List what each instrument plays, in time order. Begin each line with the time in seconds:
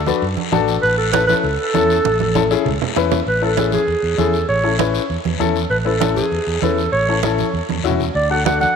Already playing: clarinet A4
0.06 upright piano D4 F#4 B4, high conga, short guiro
0.22 fingered electric bass F#2, high conga, long guiro
0.37 high conga
0.52 fingered electric bass A1, upright piano D4 F#4 A4, high conga, short guiro
0.68 short guiro
0.82 fingered electric bass A1, clarinet B4, long guiro
0.97 clarinet A4, high conga
1.12 upright piano C#4 E4 A4, clarinet B4, high conga, short guiro
1.27 upright piano C#4 E4 A4, clarinet B4, high conga, short guiro
1.43 fingered electric bass C#2, clarinet A4, high conga, long guiro
1.74 fingered electric bass E2, upright piano C#4 E4 A4, high conga, short guiro
1.90 short guiro
2.05 fingered electric bass A1, high conga, long guiro
2.20 high conga
2.35 upright piano C#4 E4 A4, high conga, short guiro
2.51 upright piano C#4 E4 G#4, short guiro
2.65 fingered electric bass C#2, low conga, long guiro
2.82 low conga
2.96 fingered electric bass E2, upright piano C#4 E4 B4, low conga, short guiro
3.12 low conga, short guiro
3.26 fingered electric bass A1, clarinet B4, long guiro
3.42 upright piano C#4 E4 A4, clarinet A4, high conga
3.57 upright piano C#4 E4 G#4, high conga, short guiro
3.72 clarinet G#4, high conga, short guiro
3.87 fingered electric bass E2, high conga, long guiro
4.03 fingered electric bass E2
4.18 fingered electric bass E2, upright piano C#4 E4 G#4, clarinet A4, high conga, short guiro
4.33 short guiro
4.49 fingered electric bass A1, clarinet C#5, long guiro
4.64 upright piano C#4 E4 A4, high conga
4.78 upright piano C#4 E4 B4, high conga, short guiro
4.95 short guiro
5.10 fingered electric bass E2, high conga, long guiro
5.25 fingered electric bass E2, high conga
5.40 fingered electric bass E2, upright piano C#4 E4 A4, high conga, short guiro
5.56 short guiro
5.70 fingered electric bass A1, clarinet B4, long guiro
5.85 upright piano C#4 E4 B4, clarinet A4, high conga
6.00 upright piano C#4 E4 A4, high conga, short guiro
6.15 clarinet G#4, high conga, short guiro
6.32 fingered electric bass E2, high conga, long guiro
6.47 fingered electric bass E2
6.61 fingered electric bass E2, upright piano C#4 E4 B4, clarinet A4, high conga, short guiro
6.78 short guiro
6.92 fingered electric bass A1, clarinet C#5, long guiro
7.08 upright piano C#4 E4 A4, high conga
7.23 upright piano C#4 E4 A4, high conga, short guiro
7.38 high conga, short guiro
7.54 fingered electric bass E2, high conga, long guiro
7.69 fingered electric bass E2, high conga
7.84 fingered electric bass E2, upright piano C#4 E4 F#4, short guiro
7.90 low conga
8.00 low conga, short guiro
8.15 fingered electric bass D2, clarinet D5, long guiro
8.30 upright piano D4 F#4 A4, clarinet F#5, high conga
8.45 upright piano D4 F#4 A4, clarinet F#5, high conga, short guiro
8.61 clarinet F#5, high conga, short guiro